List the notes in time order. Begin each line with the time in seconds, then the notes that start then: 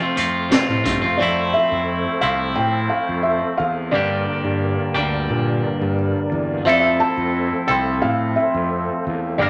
Already playing: A4 C5 F5 C6
0.00 F3 A3 C4 F4
0.16 F2 F3 A3 C4 F4, closed hi-hat
0.50 F2 C3 F3 A3 C4 F4, snare, closed hi-hat
0.68 A2 F3 A3 C4 F4
0.84 G2 F3 A3 C4 F4, kick, closed hi-hat
1.02 F2 F3 A3 C4 F4
1.17 F2 F3 A3 C4 A4 C5 D5
1.22 E4
1.53 E5
1.72 F2
2.21 C2 A3 C4 E4 F5
2.25 F3
2.55 A2 G5
2.89 F5
3.09 F2
3.23 E5
3.58 E2 F5
3.91 G2 D3 G3 A#3 D4 A#4 D5
3.95 G4
4.45 G2
4.95 D2 D3 G3 A#3 D4 G4
4.99 G2
5.30 A#2
5.81 G2
6.32 E2
6.65 F2 F3 A3 C4 E4 A4 C5 E5
6.72 D5
6.80 E5
7.00 A5
7.17 F2
7.67 C2 F3 C4 E4 A4 G5
8.02 A2 F5
8.36 E5
8.54 F2
9.07 E2
9.38 G2 D3 G3 A#3 D4 A#4 D5
9.42 D4 A#4